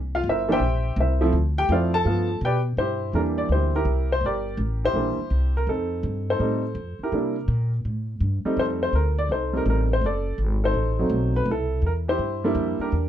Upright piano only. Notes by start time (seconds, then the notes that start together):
0.15 F4 F5
0.29 E4 A#4 C5 E5
0.48 E3 G3 A#3 D4 G5
0.53 G4 C5 E5
1.00 E4 A#4 C5 E5
1.21 F3 A3 C4 E4
1.58 G4 G5
1.70 F3 A3 C4 E4 F4 C5 D5 F5
1.94 A4 A5
2.05 F3 A3 B3 F4
2.45 G4 B4 D5 G5
2.78 E4 G4 C5
3.14 E3 G3 A#3 D4 A#4
3.38 D5
3.52 E4 G4 C5
3.75 E4 G4 A#4
4.12 C5
4.26 G4 A#4 D5
4.84 E4 G4 C5
4.95 E3 G3 A#3 D4
5.57 A#4
5.69 C4 D#4 A4
6.30 D#4 A4 C5
6.39 G3 A3 C4 D#4
7.03 E4 G4 A#4
7.13 G3 A#3 D4 E4
8.45 G3 A3 C4 D#4
8.59 D#4 A4 C5
8.83 C5
8.95 A#4
9.19 D5
9.31 D#4 A4 C5
9.53 G3 A3 C4 D#4
9.57 A#4
9.70 A#4
9.93 C5
10.06 A4 D5
10.64 D#4 A4 C5
10.99 F#3 A3 C4 D#4
11.36 B4
11.50 E4 A4
11.86 A#4
12.08 E4 G4 C5
12.44 G3 A#3 D4 E4
12.80 D4 G4 A#4